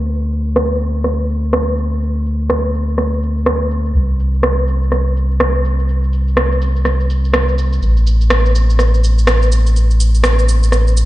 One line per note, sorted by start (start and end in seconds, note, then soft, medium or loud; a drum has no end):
0.00 3.93 D2 medium
0.08 shaker soft
0.23 shaker soft
0.32 shaker medium
0.47 shaker soft
0.56 cross-stick loud
0.56 shaker soft
0.71 shaker soft
0.81 shaker medium
0.95 shaker soft
1.04 cross-stick medium
1.04 shaker soft
1.20 shaker soft
1.29 shaker medium
1.44 shaker soft
1.53 cross-stick loud
1.53 shaker medium
1.68 shaker soft
1.78 shaker medium
1.92 shaker soft
2.02 shaker medium
2.16 shaker soft
2.26 shaker medium
2.41 shaker soft
2.50 cross-stick medium
2.50 shaker soft
2.65 shaker soft
2.74 shaker medium
2.89 shaker soft
2.98 cross-stick medium
2.98 shaker soft
3.13 shaker soft
3.23 shaker medium
3.37 shaker soft
3.46 cross-stick medium
3.46 shaker soft
3.61 shaker soft
3.71 shaker medium
3.85 shaker soft
3.95 7.80 C2 medium
3.95 shaker soft
4.10 shaker soft
4.20 shaker medium
4.34 shaker soft
4.43 cross-stick medium
4.43 shaker soft
4.58 shaker soft
4.68 shaker medium
4.83 shaker soft
4.92 cross-stick medium
4.92 shaker soft
5.07 shaker soft
5.16 shaker medium
5.31 shaker soft
5.40 cross-stick loud
5.40 shaker soft
5.55 shaker soft
5.65 shaker medium
5.79 shaker soft
5.89 shaker soft
6.04 shaker soft
6.13 shaker medium
6.28 shaker soft
6.37 cross-stick medium
6.37 shaker soft
6.52 shaker soft
6.62 shaker medium
6.76 shaker soft
6.85 cross-stick medium
6.85 shaker soft
7.00 shaker soft
7.10 shaker medium
7.25 shaker soft
7.34 cross-stick medium
7.34 shaker soft
7.48 shaker soft
7.58 shaker medium
7.73 shaker soft
7.82 11.05 A1 medium
7.82 shaker soft
7.97 shaker soft
8.07 shaker medium
8.21 shaker soft
8.30 cross-stick loud
8.30 shaker soft
8.46 shaker soft
8.55 shaker medium
8.70 shaker soft
8.79 cross-stick medium
8.79 shaker soft
8.94 shaker soft
9.04 shaker medium
9.18 shaker soft
9.27 cross-stick loud
9.27 shaker soft
9.42 shaker soft
9.52 shaker medium
9.67 shaker soft
9.76 shaker soft
9.91 shaker soft
10.00 shaker medium
10.15 shaker soft
10.24 cross-stick loud
10.24 shaker soft
10.39 shaker soft
10.49 shaker medium
10.63 shaker soft
10.72 cross-stick medium
10.72 shaker soft
10.87 shaker soft
10.97 shaker medium